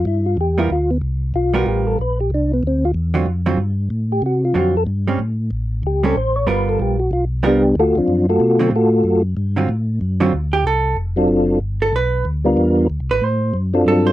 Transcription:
X:1
M:4/4
L:1/8
Q:"Swing" 1/4=187
K:G
V:1 name="Tonewheel organ"
E =F G E F B, z2 | =F ^F G A B G D B, | C ^E z6 | z G F ^E F A z2 |
z4 G A ^B ^c | B A G F =F z [G,B,DG]2 | [A,^EFA] [^E,CDE]2 [A,EFA]3 [A,EFA]2- | [A,^EFA] z6 z |
z4 z [F,CD^EA]3 | z4 z [G,B,D=F^A]3 | z4 z [F,CD^EA]3 |]
V:2 name="Hollow-body jazz guitar"
z3 [G,B,=F^A] z4 | z [G,B,=F^A]3 z4 | z3 [D,F,C^E] z [D,F,CE] z2 | z4 [D,F,C^E] z2 [G,C^C] |
z4 z [G,^B,^C] z2 | [G,B,=F^A]3 z3 [G,B,FA] z | z4 z [D,F,C^E] z2 | z3 [D,F,C^E] z3 [D,F,CE] |
z G A2 z4 | z A B2 z4 | z B c2 z2 A c |]
V:3 name="Tonewheel organ" clef=bass
G,,2 E,,2 D,,2 C,,2 | B,,,2 A,,,2 ^A,,,2 C,,2 | D,,2 E,,2 ^E,,2 G,,2 | A,,2 C,2 ^E,,2 G,,2 |
A,,2 A,,,2 ^C,,2 A,,,2 | G,,,2 ^A,,,2 B,,,2 C,,2 | D,, D,, F,,2 B,,2 A,,2 | F,,2 G,,2 A,,2 F,,2 |
D,,2 C,,2 ^E,,,2 F,,,2 | G,,,2 B,,,2 D,,2 E,,2 | (3D,, C,, A,,, A,,2 F,,2 G,,2 |]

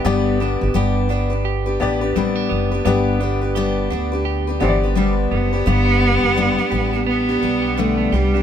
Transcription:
X:1
M:4/4
L:1/16
Q:"Swing 16ths" 1/4=85
K:G
V:1 name="Upright piano"
[B,DGd]6 z4 [B,DGd]4 z2 | [B,DGB]6 z4 [B,DGcd]4 z2 | z16 |]
V:2 name="Clean electric guitar"
B,2 D2 G2 D2 G2 B,2 C D B,2 | B,2 D2 G2 D2 G2 B,2 D2 B,2 | B, D B, G D B, G D B, D B, G D B, G D |]
V:3 name="Steel-string acoustic guitar"
[G,B,DGB]2 [B,DGB] [DGB] [G,B,DGB]2 [B,DGB] [DGB]2 [DGB] [B,DGB] [DGB] [G,B,DGB]3 [DGB] | [G,B,DGB]2 [B,DGB] [DGB] [G,B,DGB]2 [B,DGB] [DGB]2 [DGB] [B,DGB] [DGB] [G,B,DGB]3 [DGB] | [G,,D,G,B,DG]4 [G,,D,G,B,DG] [G,B,DG] [G,B,DG] [G,B,DG]2 [G,B,DG] [G,B,DG]2 [G,,D,G,B,DG]2 [G,B,DG] [G,B,DG] |]
V:4 name="Cello" clef=bass
z16 | z8 z2 E,2 G,2 B,2- | B,8 B,4 A,2 G,2 |]
V:5 name="Upright bass" clef=bass
G,,,3 G,,, G,,,6 A,,,2 A,,,2 F,,,2 | G,,,6 D,,4 G,,,4 F,,,2 | G,,,3 F,,,2 z A,,,4 B,,,4 C,,2 |]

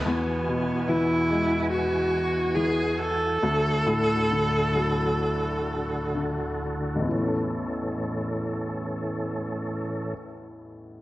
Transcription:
X:1
M:4/4
L:1/8
Q:1/4=65
K:A
V:1 name="Cello"
B,2 E2 F2 G A- | A6 z2 | z8 |]
V:2 name="Tonewheel organ" clef=bass
[E,,E,Fg]8 | [D,,D,FA]8 | [A,,E,CA]8 |]
V:3 name="Upright piano" clef=bass
E,, B,, E, G,3 E,2 | D,, A,, D, F,3 D,2 | [A,,,E,,E,A,CA]8 |]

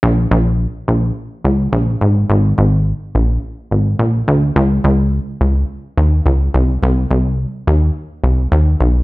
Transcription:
X:1
M:4/4
L:1/16
Q:1/4=106
K:Bbm
V:1 name="Analog synth bass" clef=bass
B,,,2 B,,,3 z B,,,2 z2 D,,2 B,,,2 A,,,2 | A,,,2 A,,,3 z B,,,2 z2 A,,,2 B,,,2 =D,,2 | D,,2 D,,3 z D,,2 z2 E,,2 D,,2 C,,2 | C,,2 C,,3 z E,,2 z2 C,,2 E,,2 _C,,2 |]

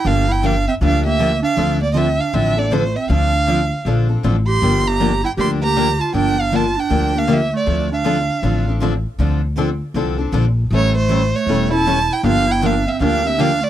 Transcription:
X:1
M:4/4
L:1/16
Q:"Swing" 1/4=158
K:Dm
V:1 name="Violin"
f2 g2 f2 e2 f2 e4 f2- | f2 d3/2 _e/2 =e2 f2 e2 d2 c2 e2 | f8 z6 c'2- | c'2 b4 g2 c'2 b4 a2 |
g2 f2 a2 g4 f2 e2 d2- | d2 f8 z6 | z16 | ^c2 ^B4 c4 a4 g2 |
f2 g2 f2 e2 f2 e2 f2 d2 |]
V:2 name="Clarinet"
D2 E2 D2 C2 D2 B,4 D2- | D2 B,3/2 B,/2 C2 D2 C2 B,2 A,2 C2 | D8 z6 G2- | G2 G4 E2 G2 G4 F2 |
D2 D2 F2 D4 D2 B,2 A,2- | A,2 D8 z6 | z16 | A,2 A,4 A,4 E4 E2 |
D2 E2 D2 C2 D2 C2 D2 A,2 |]
V:3 name="Steel-string acoustic guitar"
[D,F,B,DG]2 z2 [D,F,B,DG] z3 [D,F,B,DG]2 [B,DG]2 [D,F,B,DG] z3 | [D,F,CDA]2 z2 [D,F,CDA] z3 [D,F,CDA]2 [CDA]2 [D,F,CDA] z3 | [D,F,CDA]2 z2 [D,F,CDA] z3 [D,F,CDA]2 [CDA]2 [D,F,CDA] z3 | [D,F,B,DG]2 z2 [D,F,B,DG] z3 [D,F,B,DG]2 [B,DG]2 [D,F,B,DG] z3 |
[D,F,B,DG]2 z2 [D,F,B,DG] z3 [D,F,B,DG]2 [B,DG]2 [D,F,B,DG] z3 | [D,F,CDA]2 z2 [D,F,CDA] z3 [D,F,CDA]2 [CDA]2 [D,F,CDA] z3 | [D,F,CDA]2 z2 [D,F,CDA] z3 [D,F,CDA]2 [CDA]2 [D,F,CDA] z3 | [E,G,^CEA]2 z2 [E,G,CEA] z3 [E,G,CEA]2 [CEA]2 [E,G,CEA] z3 |
[D,F,B,DG]2 z2 [D,F,B,DG] z3 [D,F,B,DG]2 [B,DG]2 [D,F,B,DG] z3 |]
V:4 name="Steel-string acoustic guitar"
[D,F,B,DG]2 z2 [D,F,B,DG] z3 [D,F,B,DG]2 z2 [D,F,B,DG] z3 | [D,F,CDA]2 z2 [D,F,CDA] z3 [D,F,CDA]2 z2 [D,F,CDA] z3 | [D,F,CDA]2 z2 [D,F,CDA] z3 [D,F,CDA]2 z2 [D,F,CDA] z3 | [D,F,B,DG]2 z2 [D,F,B,DG] z3 [D,F,B,DG]2 z2 [D,F,B,DG] z3 |
[D,F,B,DG]2 z2 [D,F,B,DG] z3 [D,F,B,DG]2 z2 [D,F,B,DG] z3 | [D,F,CDA]2 z2 [D,F,CDA] z3 [D,F,CDA]2 z2 [D,F,CDA] z3 | [D,F,CDA]2 z2 [D,F,CDA] z3 [D,F,CDA]2 z2 [D,F,CDA] z3 | [E,G,^CEA]2 z2 [E,G,CEA] z3 [E,G,CEA]2 z2 [E,G,CEA] z3 |
[D,F,B,DG]2 z2 [D,F,B,DG] z3 [D,F,B,DG]2 z2 [D,F,B,DG] z3 |]
V:5 name="Upright bass" clef=bass
G,,,8 D,,8 | D,,8 A,,,8 | D,,8 B,,,4 A,,,4 | G,,,8 D,,8 |
G,,,8 D,,8 | D,,8 A,,,8 | D,,8 C,,4 B,,,4 | A,,,8 E,,,8 |
G,,,8 D,,8 |]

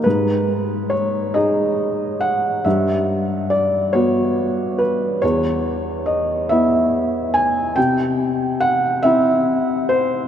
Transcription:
X:1
M:6/8
L:1/8
Q:3/8=47
K:G#m
V:1 name="Felt piano"
B2 c d2 f | e2 =d c2 B | c2 d e2 g | =g2 f e2 =c |]
V:2 name="Felt piano"
G,,3 [DG]3 | =G,,3 [B,F]3 | E,,3 [B,E]3 | =C,3 [=CE]3 |]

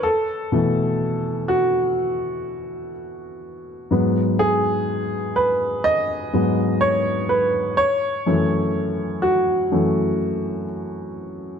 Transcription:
X:1
M:4/4
L:1/8
Q:"Swing 16ths" 1/4=62
K:Bmix
V:1 name="Grand piano"
A3 F3 z2 | z G2 B d2 c B | c3 F3 z2 |]
V:2 name="Grand piano" clef=bass
z [B,,E,A,]3 z4 | [G,,F,B,] z4 [G,,F,B,] z2 | z [F,,E,A,]3 [F,,E,A,] z3 |]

